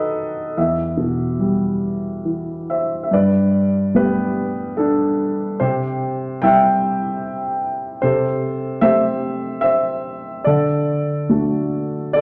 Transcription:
grand piano
Already playing: B2 D#3 D#4 G4 A4 B4 D#5 F#5
0.57 E2 E5
0.97 B2
1.39 G3
2.25 E3
2.70 C5 E5
3.03 E5
3.11 G2 B4 D5
3.94 G3 A3 B3 G4 B4
4.77 D4 A4
5.60 C3 G4 C5
6.42 G3 C4 E4 E5 G5
8.02 C3 A4 C5
8.81 A3 C4 G4 C5 E5
9.61 C5 E5
10.44 D3 A4 D5
11.29 A3 D4 F#4
12.13 A4 D5

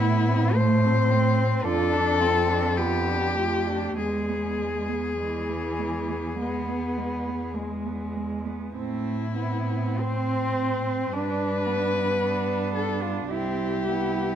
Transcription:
cello
Already playing: A2 B3 E4
0.00 A3
0.28 C4
0.55 A3 C5
0.85 C4
1.10 A3 C4
1.39 C4
1.63 F2 D4 F4 A4
1.93 D4
2.20 C4 F4
2.49 D4
2.78 B3 F4 G4
3.08 D4
3.37 A3 F4
3.67 D4
3.98 E2 G#3 G#4
4.29 B3
4.59 G#3
4.88 B3
5.19 E3 G#3
5.49 B3
5.79 G#3
6.09 B3
6.40 G#3 B3
6.69 B3
6.98 G#3
7.28 B3
7.56 G#3
7.86 B3
8.16 G#3
8.45 B3
8.74 A2 A3 C4 E4
9.37 B3 C4
9.99 C4 C5
11.13 G2 D4 B4
11.67 B3
12.22 D4
12.75 A4
13.02 F4
13.30 C2 C4 E4 G4
13.89 B3

